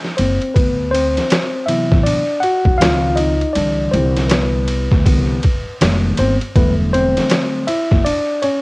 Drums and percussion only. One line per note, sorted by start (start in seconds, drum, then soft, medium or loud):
0.04 snare soft
0.18 ride medium
0.42 ride soft
0.56 kick loud
0.56 ride medium
0.95 ride medium
1.17 snare soft
1.17 ride soft
1.30 snare loud
1.30 hi-hat pedal soft
1.30 ride medium
1.68 ride medium
1.92 kick loud
1.92 snare soft
2.06 ride medium
2.43 ride soft
2.65 kick medium
2.81 snare loud
2.81 hi-hat pedal medium
2.81 ride medium
3.17 ride medium
3.41 ride soft
3.55 ride medium
3.94 ride medium
4.17 snare soft
4.17 ride soft
4.30 snare medium
4.30 hi-hat pedal soft
4.30 ride medium
4.68 ride medium
4.91 kick loud
4.91 snare soft
5.06 kick medium
5.06 ride medium
5.43 kick medium
5.43 ride soft
5.81 snare loud
5.81 hi-hat pedal medium
5.81 ride medium
6.17 ride medium
6.41 ride soft
6.56 kick loud
6.56 ride medium
6.94 ride medium
7.17 snare soft
7.17 ride soft
7.30 snare medium
7.30 hi-hat pedal soft
7.30 ride medium
7.68 ride medium
7.91 kick loud
7.91 snare soft
8.06 ride medium
8.43 ride soft